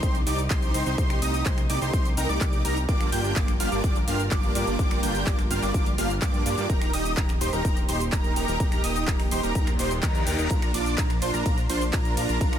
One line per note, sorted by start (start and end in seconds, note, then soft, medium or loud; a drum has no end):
0.00 0.24 C2 loud
0.00 2.85 C3 medium
0.00 0.96 G3 medium
0.00 2.85 D#4 medium
0.00 0.16 D#4 loud
0.00 0.16 G4 medium
0.00 0.16 C5 loud
0.00 0.16 C6 loud
0.00 kick loud
0.00 closed hi-hat medium
0.00 shaker soft
0.15 closed hi-hat soft
0.15 shaker soft
0.27 0.48 C2 loud
0.27 0.40 D#4 medium
0.27 0.40 G4 medium
0.27 0.40 D5 medium
0.27 0.40 D6 medium
0.27 open hi-hat loud
0.27 shaker medium
0.39 closed hi-hat soft
0.39 shaker soft
0.50 0.72 C2 loud
0.50 0.71 D#4 medium
0.50 0.72 G4 medium
0.50 0.72 C5 loud
0.50 0.71 C6 loud
0.50 kick loud
0.50 clap loud
0.50 closed hi-hat medium
0.50 shaker soft
0.62 closed hi-hat soft
0.62 shaker soft
0.74 0.84 C2 loud
0.74 0.84 D#4 medium
0.74 0.84 G4 medium
0.74 0.84 C5 loud
0.74 0.84 C6 loud
0.74 open hi-hat loud
0.74 shaker medium
0.86 0.96 C2 loud
0.86 0.95 D#4 medium
0.86 0.95 G4 medium
0.86 0.95 C5 medium
0.86 0.95 C6 medium
0.86 closed hi-hat soft
0.86 shaker soft
0.98 1.20 C2 medium
0.98 2.87 A3 medium
0.98 1.19 D#4 loud
0.98 1.19 G4 medium
0.98 1.19 C5 loud
0.98 1.19 C6 loud
0.98 kick loud
0.98 closed hi-hat medium
0.98 shaker soft
1.10 finger snap medium
1.10 closed hi-hat soft
1.10 shaker soft
1.22 1.43 C2 loud
1.22 1.43 D#4 medium
1.22 1.43 G4 medium
1.22 1.43 D#5 medium
1.22 1.43 D#6 medium
1.22 open hi-hat loud
1.22 shaker medium
1.34 closed hi-hat soft
1.34 shaker soft
1.46 1.67 C2 loud
1.46 1.59 D#4 medium
1.46 1.59 G4 medium
1.46 1.59 C5 medium
1.46 1.59 C6 medium
1.46 kick loud
1.46 clap loud
1.46 closed hi-hat medium
1.46 shaker soft
1.58 finger snap medium
1.58 closed hi-hat soft
1.58 shaker soft
1.70 1.79 C2 loud
1.70 1.79 D#4 medium
1.70 1.79 G4 medium
1.70 1.79 D5 loud
1.70 1.79 D6 loud
1.70 open hi-hat loud
1.70 shaker medium
1.81 1.91 C2 loud
1.81 1.92 D#4 medium
1.81 1.92 G4 medium
1.81 1.92 C5 medium
1.81 1.92 C6 medium
1.81 closed hi-hat soft
1.81 shaker soft
1.93 2.15 C2 loud
1.93 2.06 D#4 loud
1.93 2.06 G4 medium
1.93 2.06 C5 loud
1.93 2.06 C6 loud
1.93 kick loud
1.93 closed hi-hat medium
1.93 shaker soft
2.05 closed hi-hat soft
2.05 shaker soft
2.17 2.27 C2 loud
2.17 2.27 D#4 loud
2.17 2.27 G4 medium
2.17 2.27 A#4 loud
2.17 2.27 A#5 loud
2.17 open hi-hat loud
2.17 shaker medium
2.29 2.39 C2 medium
2.29 2.38 D#4 loud
2.29 2.38 G4 medium
2.29 2.38 D5 loud
2.29 2.38 D6 loud
2.29 closed hi-hat soft
2.29 shaker soft
2.41 2.62 C2 loud
2.41 2.61 D#4 medium
2.41 2.61 G4 medium
2.41 2.61 D5 medium
2.41 2.61 D6 medium
2.41 kick loud
2.41 clap loud
2.41 closed hi-hat medium
2.41 shaker soft
2.53 closed hi-hat soft
2.53 shaker soft
2.65 2.86 C2 loud
2.65 2.78 D#4 medium
2.65 2.78 G4 medium
2.65 2.78 A#4 medium
2.65 2.78 A#5 loud
2.65 open hi-hat loud
2.65 shaker medium
2.77 closed hi-hat soft
2.77 shaker soft
2.89 3.10 G1 medium
2.89 6.66 G3 medium
2.89 3.10 A#3 medium
2.89 3.10 D4 medium
2.89 6.66 F4 medium
2.89 3.10 F4 medium
2.89 3.10 G4 medium
2.89 6.66 A#4 loud
2.89 3.10 D5 loud
2.89 3.10 D6 loud
2.89 kick loud
2.89 closed hi-hat medium
2.89 shaker soft
3.01 finger snap medium
3.01 closed hi-hat soft
3.01 shaker soft
3.12 3.34 G1 medium
3.12 3.33 A#3 medium
3.12 3.33 D4 medium
3.12 3.33 F4 medium
3.12 3.33 G4 medium
3.12 3.33 G5 medium
3.12 3.33 G6 medium
3.12 open hi-hat loud
3.12 shaker medium
3.24 closed hi-hat soft
3.24 shaker soft
3.36 3.58 G1 loud
3.36 3.49 A#3 medium
3.36 3.49 D4 medium
3.36 3.49 F4 medium
3.36 3.49 G4 medium
3.36 3.49 D5 medium
3.36 3.49 D6 medium
3.36 kick loud
3.36 clap loud
3.36 closed hi-hat medium
3.36 shaker soft
3.48 finger snap medium
3.48 closed hi-hat soft
3.48 shaker soft
3.60 3.70 G1 loud
3.60 3.69 A#3 medium
3.60 3.69 D4 medium
3.60 3.69 F4 medium
3.60 3.69 G4 medium
3.60 3.69 F5 loud
3.60 3.69 F6 medium
3.60 open hi-hat loud
3.60 shaker medium
3.72 3.81 G1 medium
3.72 3.82 A#3 medium
3.72 3.82 D4 medium
3.72 3.82 F4 medium
3.72 3.82 G4 medium
3.72 3.82 D5 medium
3.72 3.82 D6 medium
3.72 closed hi-hat soft
3.72 shaker soft
3.84 4.05 G1 medium
3.84 3.97 A#3 loud
3.84 3.97 D4 medium
3.84 3.97 F4 medium
3.84 3.97 G4 medium
3.84 3.97 D5 loud
3.84 3.97 D6 loud
3.84 kick loud
3.84 closed hi-hat medium
3.84 shaker soft
3.96 closed hi-hat soft
3.96 shaker soft
4.08 4.29 G1 loud
4.08 4.21 A#3 medium
4.08 4.21 D4 medium
4.08 4.21 F4 medium
4.08 4.21 G4 medium
4.08 4.21 F5 medium
4.08 4.21 F6 medium
4.08 open hi-hat loud
4.08 shaker medium
4.20 closed hi-hat soft
4.20 shaker soft
4.31 4.53 G1 loud
4.31 4.52 A#3 medium
4.31 4.52 D4 medium
4.31 4.52 F4 medium
4.31 4.52 G4 medium
4.31 4.52 D5 medium
4.31 4.52 D6 loud
4.31 kick loud
4.31 clap loud
4.31 closed hi-hat medium
4.31 shaker soft
4.43 closed hi-hat soft
4.43 shaker soft
4.55 4.65 G1 loud
4.55 4.65 A#3 medium
4.55 4.65 D4 medium
4.55 4.65 F4 medium
4.55 4.65 G4 medium
4.55 4.65 D5 loud
4.55 4.65 D6 loud
4.55 open hi-hat loud
4.55 shaker medium
4.67 4.77 G1 loud
4.67 4.76 A#3 medium
4.67 4.76 D4 medium
4.67 4.76 F4 medium
4.67 4.76 G4 medium
4.67 4.76 D5 medium
4.67 4.76 D6 medium
4.67 closed hi-hat soft
4.67 shaker soft
4.79 5.01 G1 loud
4.79 5.00 A#3 medium
4.79 5.00 D4 medium
4.79 5.00 F4 medium
4.79 5.00 G4 medium
4.79 5.00 D5 loud
4.79 5.00 D6 loud
4.79 kick loud
4.79 closed hi-hat medium
4.79 shaker soft
4.91 finger snap medium
4.91 closed hi-hat soft
4.91 shaker soft
5.03 5.24 G1 loud
5.03 5.24 A#3 medium
5.03 5.24 D4 medium
5.03 5.24 F4 medium
5.03 5.24 G4 medium
5.03 5.24 G5 medium
5.03 5.24 G6 medium
5.03 open hi-hat loud
5.03 shaker medium
5.15 closed hi-hat soft
5.15 shaker soft
5.27 5.48 G1 loud
5.27 5.40 A#3 medium
5.27 5.40 D4 medium
5.27 5.40 F4 medium
5.27 5.40 G4 medium
5.27 5.40 D5 medium
5.27 5.40 D6 medium
5.27 kick loud
5.27 clap loud
5.27 closed hi-hat medium
5.27 shaker soft
5.39 finger snap medium
5.39 closed hi-hat soft
5.39 shaker soft
5.50 5.60 G1 loud
5.50 5.60 A#3 medium
5.50 5.60 D4 medium
5.50 5.60 F4 medium
5.50 5.60 G4 medium
5.50 5.60 F5 medium
5.50 5.60 F6 loud
5.50 open hi-hat loud
5.50 shaker medium
5.62 5.72 G1 medium
5.62 5.73 A#3 medium
5.62 5.73 D4 medium
5.62 5.73 F4 medium
5.62 5.73 G4 medium
5.62 5.73 D5 medium
5.62 5.73 D6 medium
5.62 closed hi-hat soft
5.62 shaker soft
5.74 5.96 G1 loud
5.74 5.87 A#3 loud
5.74 5.87 D4 loud
5.74 5.87 F4 medium
5.74 5.87 G4 medium
5.74 5.87 D5 loud
5.74 5.87 D6 loud
5.74 kick loud
5.74 closed hi-hat medium
5.74 shaker soft
5.86 closed hi-hat soft
5.86 shaker soft
5.98 6.20 G1 medium
5.98 6.11 A#3 medium
5.98 6.11 D4 medium
5.98 6.11 F4 medium
5.98 6.11 G4 medium
5.98 6.11 F5 medium
5.98 6.11 F6 medium
5.98 open hi-hat loud
5.98 shaker medium
6.10 closed hi-hat soft
6.10 shaker soft
6.22 6.43 G2 medium
6.22 6.43 A#3 medium
6.22 6.43 D4 medium
6.22 6.43 F4 medium
6.22 6.43 G4 medium
6.22 6.43 D5 loud
6.22 6.43 D6 loud
6.22 kick loud
6.22 clap loud
6.22 closed hi-hat medium
6.22 shaker soft
6.34 closed hi-hat soft
6.34 shaker soft
6.46 6.55 G2 loud
6.46 6.56 A#3 medium
6.46 6.56 D4 medium
6.46 6.56 F4 medium
6.46 6.56 G4 medium
6.46 6.56 D5 loud
6.46 6.56 D6 loud
6.46 open hi-hat loud
6.46 shaker medium
6.58 6.67 G2 loud
6.58 6.67 A#3 medium
6.58 6.67 D4 medium
6.58 6.67 F4 medium
6.58 6.67 G4 medium
6.58 6.67 D5 medium
6.58 6.67 D6 medium
6.58 closed hi-hat soft
6.58 shaker soft
6.70 6.91 D#1 loud
6.70 10.47 D#3 medium
6.70 12.59 A#3 medium
6.70 6.91 D#4 medium
6.70 10.47 G4 medium
6.70 6.91 G4 medium
6.70 6.91 A#4 loud
6.70 6.91 A#5 loud
6.70 kick loud
6.70 closed hi-hat medium
6.70 shaker soft
6.82 finger snap medium
6.82 closed hi-hat soft
6.82 shaker soft
6.93 7.15 D#1 loud
6.93 7.14 D#4 medium
6.93 7.14 G4 medium
6.93 7.14 D#5 medium
6.93 7.14 D#6 medium
6.93 open hi-hat loud
6.93 shaker medium
7.05 closed hi-hat soft
7.05 shaker soft
7.17 7.39 D#1 loud
7.17 7.30 D#4 medium
7.17 7.30 G4 medium
7.17 7.30 A#4 medium
7.17 7.30 A#5 medium
7.17 kick loud
7.17 clap loud
7.17 closed hi-hat medium
7.17 shaker soft
7.29 finger snap medium
7.29 closed hi-hat soft
7.29 shaker soft
7.41 7.51 D#1 loud
7.41 7.50 D#4 medium
7.41 7.50 G4 medium
7.41 7.50 C5 loud
7.41 7.50 C6 medium
7.41 open hi-hat loud
7.41 shaker medium
7.53 7.62 D#1 medium
7.53 7.63 D#4 medium
7.53 7.63 G4 medium
7.53 7.63 A#4 medium
7.53 7.63 A#5 medium
7.53 closed hi-hat soft
7.53 shaker soft
7.65 7.86 D#1 loud
7.65 7.78 D#4 loud
7.65 7.78 G4 medium
7.65 7.78 A#4 loud
7.65 7.78 A#5 loud
7.65 kick loud
7.65 closed hi-hat medium
7.65 shaker soft
7.77 closed hi-hat soft
7.77 shaker soft
7.89 8.10 D#1 loud
7.89 8.02 D#4 medium
7.89 8.02 G4 medium
7.89 8.02 C5 medium
7.89 8.02 C6 medium
7.89 open hi-hat loud
7.89 shaker medium
8.00 closed hi-hat soft
8.00 shaker soft
8.12 8.34 D#1 loud
8.12 8.33 D#4 medium
8.12 8.33 G4 medium
8.12 8.33 A#4 loud
8.12 8.33 A#5 loud
8.12 kick loud
8.12 clap loud
8.12 closed hi-hat medium
8.12 shaker soft
8.24 closed hi-hat soft
8.24 shaker soft
8.36 8.46 D#1 loud
8.36 8.46 D#4 medium
8.36 8.46 G4 medium
8.36 8.46 A#4 loud
8.36 8.46 A#5 loud
8.36 open hi-hat loud
8.36 shaker medium
8.48 8.58 D#1 loud
8.48 8.57 D#4 medium
8.48 8.57 G4 medium
8.48 8.57 A#4 loud
8.48 8.57 A#5 medium
8.48 closed hi-hat soft
8.48 shaker soft
8.60 8.81 D#1 loud
8.60 8.81 D#4 medium
8.60 8.81 G4 medium
8.60 8.81 A#4 loud
8.60 8.81 A#5 loud
8.60 kick loud
8.60 closed hi-hat medium
8.60 shaker soft
8.72 finger snap medium
8.72 closed hi-hat soft
8.72 shaker soft
8.84 9.05 D#1 medium
8.84 9.05 D#4 medium
8.84 9.05 G4 medium
8.84 9.05 D#5 medium
8.84 9.05 D#6 medium
8.84 open hi-hat loud
8.84 shaker medium
8.96 closed hi-hat soft
8.96 shaker soft
9.08 9.29 D#1 loud
9.08 9.21 D#4 medium
9.08 9.21 G4 medium
9.08 9.21 A#4 medium
9.08 9.21 A#5 medium
9.08 kick loud
9.08 clap loud
9.08 closed hi-hat medium
9.08 shaker soft
9.20 finger snap medium
9.20 open hi-hat medium
9.20 shaker soft
9.31 9.41 D#1 loud
9.31 9.41 D#4 medium
9.31 9.41 G4 medium
9.31 9.41 C5 loud
9.31 9.41 C6 loud
9.31 open hi-hat loud
9.31 shaker medium
9.43 9.53 D#1 medium
9.43 9.53 D#4 medium
9.43 9.53 G4 medium
9.43 9.53 A#4 medium
9.43 9.53 A#5 medium
9.43 closed hi-hat soft
9.43 shaker soft
9.55 9.77 D#1 loud
9.55 9.68 D#4 loud
9.55 9.68 G4 medium
9.55 9.68 A#4 loud
9.55 9.68 A#5 loud
9.55 kick loud
9.55 closed hi-hat medium
9.55 reverse cymbal medium
9.55 shaker soft
9.67 finger snap medium
9.67 closed hi-hat soft
9.67 shaker soft
9.79 10.01 D#1 loud
9.79 9.92 D#4 medium
9.79 9.92 G4 medium
9.79 9.92 C5 medium
9.79 9.92 C6 medium
9.79 open hi-hat loud
9.79 shaker medium
9.91 closed hi-hat soft
9.91 shaker soft
10.03 10.24 D#2 loud
10.03 10.24 D#4 medium
10.03 10.24 G4 medium
10.03 10.24 A#4 loud
10.03 10.24 A#5 loud
10.03 kick loud
10.03 clap loud
10.03 closed hi-hat medium
10.03 shaker soft
10.15 closed hi-hat soft
10.15 shaker soft
10.27 10.36 D#2 loud
10.27 10.37 D#4 medium
10.27 10.37 G4 medium
10.27 10.37 A#4 loud
10.27 10.37 A#5 loud
10.27 open hi-hat loud
10.27 shaker medium
10.39 10.48 D#1 medium
10.39 10.48 D#4 medium
10.39 10.48 G4 medium
10.39 10.48 A#4 medium
10.39 10.48 A#5 medium
10.39 closed hi-hat soft
10.39 shaker soft
10.50 10.72 A#1 loud
10.50 12.59 F3 medium
10.50 12.59 D4 medium
10.50 10.71 D4 medium
10.50 10.71 F4 medium
10.50 10.71 A#4 loud
10.50 10.71 A#5 loud
10.50 kick loud
10.50 closed hi-hat medium
10.50 ride medium
10.50 shaker soft
10.62 finger snap medium
10.62 closed hi-hat soft
10.62 shaker soft
10.74 10.96 A#1 medium
10.74 10.95 D4 medium
10.74 10.95 F4 medium
10.74 10.95 D5 medium
10.74 10.95 D6 medium
10.74 open hi-hat loud
10.74 ride medium
10.74 shaker medium
10.86 closed hi-hat soft
10.86 shaker soft
10.98 11.20 A#1 loud
10.98 11.11 D4 medium
10.98 11.11 F4 medium
10.98 11.11 A#4 medium
10.98 11.11 A#5 medium
10.98 kick loud
10.98 clap loud
10.98 closed hi-hat medium
10.98 ride medium
10.98 shaker soft
11.10 finger snap medium
11.10 closed hi-hat soft
11.10 shaker soft
11.22 11.31 A#1 loud
11.22 11.31 D4 medium
11.22 11.31 F4 medium
11.22 11.31 C5 loud
11.22 11.31 C6 loud
11.22 open hi-hat loud
11.22 ride medium
11.22 shaker medium
11.34 11.43 A#1 medium
11.34 11.44 D4 medium
11.34 11.44 F4 medium
11.34 11.44 A#4 medium
11.34 11.44 A#5 medium
11.34 closed hi-hat soft
11.34 shaker soft
11.46 11.67 A#1 loud
11.46 11.59 D4 loud
11.46 11.59 F4 medium
11.46 11.59 A#4 loud
11.46 11.59 A#5 loud
11.46 kick loud
11.46 closed hi-hat medium
11.46 ride medium
11.46 shaker soft
11.58 closed hi-hat soft
11.58 shaker soft
11.69 11.91 A#1 loud
11.69 11.83 D4 medium
11.69 11.82 F4 medium
11.69 11.83 C5 medium
11.69 11.82 C6 medium
11.69 open hi-hat loud
11.69 ride medium
11.69 shaker medium
11.81 closed hi-hat soft
11.81 shaker soft
11.93 12.15 A#1 loud
11.93 12.14 D4 medium
11.93 12.14 F4 medium
11.93 12.14 A#4 loud
11.93 12.14 A#5 loud
11.93 kick loud
11.93 clap loud
11.93 closed hi-hat medium
11.93 ride medium
11.93 shaker soft
12.05 closed hi-hat soft
12.05 shaker soft
12.17 12.27 A#1 loud
12.17 12.27 D4 medium
12.17 12.27 F4 medium
12.17 12.27 A#4 loud
12.17 12.27 A#5 loud
12.17 open hi-hat loud
12.17 ride medium
12.17 shaker medium
12.29 12.39 A#1 loud
12.29 12.38 D4 medium
12.29 12.38 F4 medium
12.29 12.38 A#4 medium
12.29 12.38 A#5 medium
12.29 closed hi-hat soft
12.29 shaker soft
12.41 12.59 A#1 loud
12.41 12.59 D4 medium
12.41 12.59 F4 medium
12.41 12.59 A#4 loud
12.41 12.59 A#5 loud
12.41 kick loud
12.41 closed hi-hat medium
12.41 ride medium
12.41 shaker soft
12.53 finger snap medium
12.53 closed hi-hat soft
12.53 shaker soft